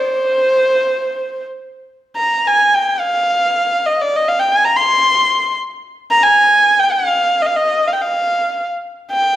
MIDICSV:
0, 0, Header, 1, 2, 480
1, 0, Start_track
1, 0, Tempo, 500000
1, 8987, End_track
2, 0, Start_track
2, 0, Title_t, "Kamancheh"
2, 0, Program_c, 0, 110
2, 0, Note_on_c, 0, 72, 81
2, 1382, Note_off_c, 0, 72, 0
2, 2078, Note_on_c, 0, 82, 70
2, 2373, Note_on_c, 0, 80, 75
2, 2388, Note_off_c, 0, 82, 0
2, 2641, Note_on_c, 0, 79, 66
2, 2655, Note_off_c, 0, 80, 0
2, 2883, Note_on_c, 0, 77, 82
2, 2897, Note_off_c, 0, 79, 0
2, 3706, Note_on_c, 0, 75, 66
2, 3720, Note_off_c, 0, 77, 0
2, 3856, Note_on_c, 0, 74, 74
2, 3871, Note_off_c, 0, 75, 0
2, 3994, Note_on_c, 0, 75, 76
2, 4009, Note_off_c, 0, 74, 0
2, 4113, Note_on_c, 0, 77, 78
2, 4127, Note_off_c, 0, 75, 0
2, 4222, Note_on_c, 0, 79, 73
2, 4236, Note_off_c, 0, 77, 0
2, 4338, Note_on_c, 0, 80, 74
2, 4352, Note_off_c, 0, 79, 0
2, 4462, Note_on_c, 0, 82, 81
2, 4477, Note_off_c, 0, 80, 0
2, 4574, Note_on_c, 0, 84, 85
2, 4589, Note_off_c, 0, 82, 0
2, 5327, Note_off_c, 0, 84, 0
2, 5866, Note_on_c, 0, 82, 90
2, 5985, Note_on_c, 0, 80, 86
2, 5999, Note_off_c, 0, 82, 0
2, 6525, Note_on_c, 0, 79, 80
2, 6539, Note_off_c, 0, 80, 0
2, 6641, Note_on_c, 0, 77, 83
2, 6655, Note_off_c, 0, 79, 0
2, 7124, Note_on_c, 0, 75, 69
2, 7138, Note_off_c, 0, 77, 0
2, 7167, Note_on_c, 0, 77, 67
2, 7181, Note_off_c, 0, 75, 0
2, 7260, Note_on_c, 0, 75, 76
2, 7274, Note_off_c, 0, 77, 0
2, 7561, Note_on_c, 0, 77, 61
2, 7576, Note_off_c, 0, 75, 0
2, 7613, Note_on_c, 0, 79, 56
2, 7628, Note_off_c, 0, 77, 0
2, 7695, Note_on_c, 0, 77, 71
2, 7710, Note_off_c, 0, 79, 0
2, 8305, Note_off_c, 0, 77, 0
2, 8747, Note_on_c, 0, 79, 79
2, 8987, Note_off_c, 0, 79, 0
2, 8987, End_track
0, 0, End_of_file